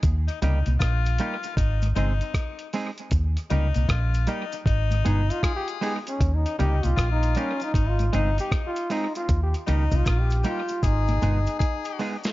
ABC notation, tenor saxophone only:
X:1
M:4/4
L:1/16
Q:"Swing 16ths" 1/4=78
K:Ebmix
V:1 name="Tenor saxophone"
z E E2 F4 E2 E4 z2 | z2 E2 F2 E2 E4 A3 z | z E E2 F4 E2 E4 z2 | z2 E2 F2 G2 A4 A3 z |]